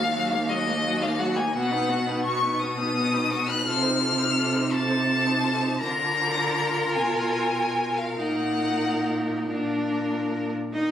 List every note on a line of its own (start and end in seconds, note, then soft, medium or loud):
0.00 1.50 D#2 medium
0.00 0.15 A#3 medium
0.00 0.13 D#4 medium
0.00 0.51 F5 loud
0.14 0.34 F#3 medium
0.14 0.32 F#4 medium
0.31 0.52 A#3 medium
0.31 0.51 D#4 medium
0.49 0.69 F#3 medium
0.49 0.68 F#4 medium
0.49 1.03 D#5 loud
0.67 0.84 A#3 medium
0.67 0.84 D#4 medium
0.85 1.04 F#3 medium
0.85 1.02 F#4 medium
1.01 1.21 A#3 medium
1.01 1.20 D#4 medium
1.01 1.20 F5 loud
1.19 1.38 F#3 medium
1.19 1.37 F#4 medium
1.19 1.37 F#5 loud
1.35 1.54 A#3 medium
1.35 1.53 D#4 medium
1.35 1.55 G#5 loud
1.53 3.61 B2 loud
1.53 1.73 B3 medium
1.53 1.73 F#4 medium
1.53 2.23 F#5 loud
1.71 1.91 D#4 medium
1.71 1.91 B4 medium
1.89 2.08 B3 medium
1.89 2.09 F#4 medium
2.07 2.24 D#4 medium
2.07 2.25 B4 medium
2.23 2.44 B3 medium
2.23 2.44 F#4 medium
2.23 2.60 C#6 loud
2.42 2.62 D#4 medium
2.42 2.62 B4 medium
2.59 2.79 B3 medium
2.59 2.81 F#4 medium
2.59 3.49 D#6 loud
2.78 2.94 D#4 medium
2.78 2.95 B4 medium
2.95 3.15 B3 medium
2.95 3.15 F#4 medium
3.13 3.32 D#4 medium
3.13 3.32 B4 medium
3.30 3.50 B3 medium
3.30 3.49 F#4 medium
3.47 3.65 D#4 medium
3.47 3.64 B4 medium
3.47 3.67 F#6 loud
3.65 5.77 C3 loud
3.65 3.85 F4 medium
3.65 3.84 A4 medium
3.65 4.73 F6 loud
3.82 4.02 D#4 medium
3.82 4.02 C5 medium
4.00 4.20 F4 medium
4.00 4.19 A4 medium
4.18 4.36 D#4 medium
4.18 4.36 C5 medium
4.36 4.56 F4 medium
4.36 4.56 A4 medium
4.54 4.74 D#4 medium
4.54 4.73 C5 medium
4.72 4.91 F4 medium
4.72 4.91 A4 medium
4.72 5.80 A5 loud
4.89 5.07 D#4 medium
4.89 5.06 C5 medium
5.07 5.27 F4 medium
5.07 5.27 A4 medium
5.25 5.45 D#4 medium
5.25 5.45 C5 medium
5.44 5.63 F4 medium
5.44 5.64 A4 medium
5.62 5.80 D#4 medium
5.62 5.79 C5 medium
5.80 6.98 D3 medium
5.80 8.16 F4 loud
5.80 8.15 A#4 loud
5.80 6.93 A#5 loud
6.95 8.19 B2 medium
6.95 7.99 G#5 loud
7.98 8.21 F5 medium
8.18 9.47 A#2 medium
8.18 9.47 D#4 medium
8.18 9.46 A#4 medium
8.18 9.49 F#5 loud
9.48 10.51 A#2 medium
9.48 10.50 D4 medium
9.48 10.50 A#4 medium
10.73 10.91 D#3 medium
10.73 10.91 D#4 medium
10.73 10.91 D#5 medium
10.73 10.91 A#5 medium